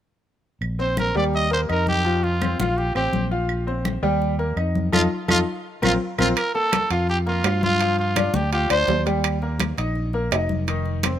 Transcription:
0.61 1.11 A#1 medium
0.61 high conga soft
0.61 claves medium
0.79 1.09 C4 medium
0.79 1.09 C5 medium
0.79 0.97 C5 medium
0.79 high conga soft
0.97 1.15 A#4 medium
0.97 high conga medium
0.97 claves medium
1.15 1.66 D#2 medium
1.15 1.45 G3 medium
1.15 1.45 G4 medium
1.15 1.25 D5 medium
1.15 high conga soft
1.34 1.51 D#5 medium
1.34 high conga soft
1.51 1.66 A#3 medium
1.51 1.66 A#4 medium
1.51 1.61 C5 medium
1.51 high conga soft
1.69 2.54 F2 medium
1.69 1.99 D#4 medium
1.69 1.87 A#4 medium
1.69 1.99 D#5 medium
1.69 high conga soft
1.69 claves medium
1.87 2.25 G4 loud
1.87 high conga medium
2.05 2.34 F3 medium
2.05 2.35 F4 medium
2.05 high conga soft
2.23 2.59 F4 medium
2.23 high conga soft
2.41 2.56 C4 medium
2.41 2.56 C5 medium
2.41 high conga medium
2.41 claves medium
2.59 2.93 A#1 medium
2.59 2.89 F4 medium
2.59 2.79 F4 medium
2.59 2.89 F5 medium
2.59 high conga medium
2.77 2.95 G4 medium
2.77 high conga soft
2.95 3.12 A1 medium
2.95 3.25 C4 medium
2.95 3.29 G4 medium
2.95 3.25 C5 medium
2.95 high conga soft
2.95 claves medium
3.13 3.97 A#1 medium
3.13 high conga medium
3.31 3.61 F4 medium
3.31 3.61 F5 medium
3.31 high conga soft
3.49 high conga soft
3.49 claves medium
3.67 3.96 C4 medium
3.67 3.97 C5 medium
3.67 high conga soft
3.85 high conga medium
3.85 claves medium
4.03 4.53 D#2 medium
4.03 4.32 G3 medium
4.03 4.32 G4 medium
4.03 high conga soft
4.22 high conga soft
4.39 4.54 A#3 medium
4.39 4.54 A#4 medium
4.39 high conga soft
4.56 4.90 F2 medium
4.56 4.86 D#4 medium
4.56 4.87 D#5 medium
4.56 high conga soft
4.56 claves medium
4.75 high conga medium
4.92 5.06 F2 medium
4.92 5.04 D#4 medium
4.92 5.04 F4 medium
4.92 5.02 F4 medium
4.92 5.04 A4 medium
4.92 high conga medium
4.92 claves medium
5.28 5.42 F2 medium
5.28 5.40 D#4 medium
5.28 5.40 F4 medium
5.28 5.38 F4 loud
5.28 5.40 A4 medium
5.28 high conga medium
5.28 claves loud
5.82 5.96 A#1 medium
5.82 5.94 C4 medium
5.82 5.94 F4 medium
5.82 5.93 F4 medium
5.82 5.94 A#4 medium
5.82 high conga loud
5.82 claves medium
6.18 6.32 A#1 medium
6.18 6.30 C4 medium
6.18 6.30 F4 medium
6.18 6.29 F4 medium
6.18 6.30 A#4 medium
6.18 high conga medium
6.18 claves medium
6.36 6.53 A#4 medium
6.36 high conga soft
6.36 high timbale medium
6.36 claves medium
6.54 6.84 A#3 medium
6.54 6.88 A4 medium
6.54 6.84 A4 medium
6.54 high conga soft
6.72 high conga medium
6.72 high timbale medium
6.72 low timbale medium
6.72 claves medium
6.90 7.41 F2 medium
6.90 7.20 F4 medium
6.90 7.08 F4 medium
6.90 7.20 F5 medium
6.90 high conga soft
6.90 high timbale medium
7.09 7.17 G4 medium
7.09 high conga soft
7.26 7.41 A#3 medium
7.26 7.61 F4 medium
7.26 7.41 A#4 medium
7.26 high conga soft
7.44 8.28 G2 medium
7.44 7.74 F4 medium
7.44 7.74 F5 medium
7.44 high conga soft
7.44 high timbale loud
7.44 low timbale medium
7.44 claves medium
7.63 7.97 F4 medium
7.63 high conga medium
7.80 8.10 F3 medium
7.80 8.10 F4 medium
7.80 high conga soft
7.80 high timbale medium
7.99 8.36 F4 medium
7.99 high conga soft
8.16 8.46 D4 medium
8.16 8.46 D5 medium
8.16 high conga medium
8.16 high timbale medium
8.16 low timbale medium
8.16 claves medium
8.34 8.67 D2 medium
8.34 8.52 G4 medium
8.34 high conga medium
8.52 8.67 F4 medium
8.52 8.69 G4 medium
8.52 8.67 F5 medium
8.52 high conga soft
8.52 high timbale medium
8.70 8.87 D2 medium
8.70 8.99 D4 medium
8.70 9.04 C5 loud
8.70 8.99 D5 medium
8.70 high conga soft
8.70 high timbale medium
8.70 claves medium
8.88 9.72 D#2 medium
8.88 high conga medium
8.88 low timbale medium
9.06 9.36 G3 medium
9.06 9.36 G4 medium
9.06 high conga soft
9.06 high timbale medium
9.24 high conga soft
9.24 high timbale medium
9.24 claves medium
9.42 9.72 A#3 medium
9.42 9.72 A#4 medium
9.42 high conga soft
9.60 high conga medium
9.60 high timbale medium
9.60 low timbale medium
9.60 claves medium
9.78 10.28 A#1 medium
9.78 10.07 D#4 medium
9.78 10.07 D#5 medium
9.78 high conga soft
9.78 high timbale medium
9.96 high conga soft
10.13 10.29 A#3 medium
10.13 10.29 A#4 medium
10.13 high conga soft
10.31 11.15 F1 medium
10.31 10.61 D#4 medium
10.31 10.61 D#5 medium
10.31 high conga soft
10.31 high timbale medium
10.31 low timbale medium
10.31 claves medium
10.49 high conga medium
10.67 10.97 D#3 medium
10.67 10.97 D#4 medium
10.67 high conga soft
10.67 high timbale medium
10.85 high conga soft
11.03 11.19 C4 medium
11.03 11.19 C5 medium
11.03 high conga medium
11.03 high timbale medium
11.03 low timbale medium
11.03 claves medium

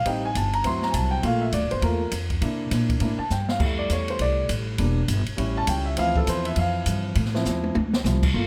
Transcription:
0.05 0.34 A1 medium
0.05 0.27 G3 soft
0.05 0.27 C4 soft
0.05 0.28 D#4 medium
0.05 0.24 G5 medium
0.05 kick soft
0.05 ride medium
0.25 0.36 G#5 medium
0.35 0.64 G1 medium
0.35 0.54 A5 medium
0.35 kick soft
0.35 hi-hat pedal medium
0.35 ride medium
0.53 0.65 A#5 medium
0.53 ride soft
0.64 0.93 D2 medium
0.64 1.20 F#3 medium
0.64 1.21 C4 soft
0.64 1.21 E4 medium
0.64 0.83 C6 medium
0.64 kick soft
0.64 ride medium
0.82 0.94 A#5 medium
0.82 snare soft
0.90 1.23 C2 loud
0.90 0.93 G#5 soft
0.90 kick soft
0.90 hi-hat pedal medium
0.90 ride medium
0.94 1.12 A5 medium
1.11 1.23 G5 medium
1.23 1.52 A#1 medium
1.23 1.45 A3 medium
1.23 1.45 A#3 soft
1.23 1.45 F4 medium
1.23 1.42 F5 medium
1.23 kick soft
1.23 ride medium
1.41 1.53 E5 medium
1.52 1.64 D2 medium
1.52 1.71 D5 medium
1.52 kick soft
1.52 hi-hat pedal medium
1.52 ride medium
1.63 1.72 A#1 medium
1.71 1.81 G1 medium
1.71 1.82 C5 medium
1.71 ride soft
1.82 2.11 E2 medium
1.82 1.99 A3 soft
1.82 1.99 A#3 soft
1.82 1.99 F4 medium
1.82 2.11 A#4 medium
1.82 kick soft
1.82 ride medium
2.11 2.41 F2 medium
2.11 kick soft
2.11 hi-hat pedal medium
2.11 ride medium
2.30 kick medium
2.30 ride soft
2.41 2.71 C3 medium
2.41 2.99 A#3 soft
2.41 2.99 D4 soft
2.41 3.00 E4 medium
2.41 kick soft
2.41 ride medium
2.71 3.00 A#2 medium
2.71 kick soft
2.71 snare soft
2.71 hi-hat pedal medium
2.71 ride medium
2.89 kick medium
2.89 ride soft
3.00 3.18 A2 medium
3.00 3.17 A#3 soft
3.00 3.18 D4 soft
3.00 3.18 E4 soft
3.00 ride medium
3.19 3.30 A5 medium
3.19 muted upright bass stroke soft
3.30 3.59 G2 medium
3.30 3.49 G5 medium
3.30 snare soft
3.30 hi-hat pedal medium
3.49 3.60 F5 medium
3.49 snare medium
3.59 3.89 F2 medium
3.59 4.74 G3 soft
3.59 4.75 A3 soft
3.59 4.75 E4 soft
3.59 3.79 E5 medium
3.59 kick medium
3.59 crash medium
3.79 3.90 D5 medium
3.90 4.18 E2 medium
3.90 4.09 C#5 medium
3.90 kick soft
3.90 hi-hat pedal medium
3.90 ride medium
4.08 4.20 C5 medium
4.08 ride soft
4.19 4.48 C2 medium
4.19 4.48 D5 medium
4.19 kick soft
4.19 ride medium
4.49 4.78 A1 medium
4.49 kick soft
4.49 hi-hat pedal medium
4.49 ride medium
4.78 5.07 E1 medium
4.78 5.00 G3 soft
4.78 5.01 A#3 soft
4.78 5.01 D4 medium
4.78 kick soft
4.78 ride medium
5.08 5.25 G1 medium
5.08 kick soft
5.08 hi-hat pedal medium
5.08 ride medium
5.26 muted upright bass stroke soft
5.26 ride soft
5.37 5.67 A1 medium
5.37 5.93 G3 medium
5.37 5.94 C#4 medium
5.37 5.94 E4 medium
5.37 kick soft
5.37 ride medium
5.57 5.68 A5 medium
5.67 5.96 C#2 loud
5.67 5.86 G5 medium
5.67 kick soft
5.67 hi-hat pedal medium
5.67 ride medium
5.85 5.97 E5 medium
5.97 6.26 D2 medium
5.97 7.12 E3 medium
5.97 7.12 F3 soft
5.97 7.12 C4 soft
5.97 6.16 F5 medium
5.97 kick soft
5.97 ride medium
6.16 6.27 A4 medium
6.16 kick medium
6.27 6.56 E2 loud
6.27 6.46 C5 medium
6.27 kick soft
6.27 hi-hat pedal medium
6.27 ride medium
6.45 6.56 E5 medium
6.45 ride medium
6.56 6.85 F2 medium
6.56 7.43 F5 medium
6.56 kick soft
6.56 ride medium
6.86 7.15 G2 medium
6.86 kick soft
6.86 hi-hat pedal medium
6.86 ride medium
7.15 7.44 A2 loud
7.15 kick soft
7.15 ride medium
7.25 snare soft
7.34 7.73 F3 soft
7.34 7.73 C4 soft
7.34 7.74 E4 medium
7.34 snare medium
7.45 7.74 E2 loud
7.45 snare medium
7.45 hi-hat pedal medium
7.64 high tom medium
7.75 8.04 D2 medium
7.75 high tom medium
7.93 snare medium
8.04 8.33 C2 loud
8.04 8.22 F3 soft
8.04 8.22 C4 soft
8.04 8.22 E4 soft
8.04 snare medium
8.04 hi-hat pedal medium
8.23 kick medium
8.23 crash medium
8.33 8.47 G1 medium
8.33 8.47 A3 soft
8.33 8.47 A#3 soft
8.33 8.47 F4 medium
8.33 kick soft

